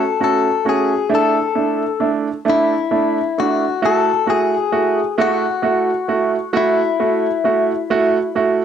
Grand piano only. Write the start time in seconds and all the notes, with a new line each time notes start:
0.20 A3 C#4 F#4
0.65 A3 C#4 F#4
1.09 A3 D4 E4
1.55 A3 D4 E4
2.00 A3 D4 E4
2.45 A3 D4 E4
2.91 A3 D4 E4
3.38 A3 D4 E4
3.82 A3 E4 F#4
4.26 A3 E4 F#4
4.72 A3 E4 F#4
5.18 A3 E4 F#4
5.62 A3 E4 F#4
6.08 A3 E4 F#4
6.53 A3 E4 F#4
7.00 A3 E4 F#4
7.44 A3 E4 F#4
7.90 A3 E4 F#4
8.35 A3 E4 F#4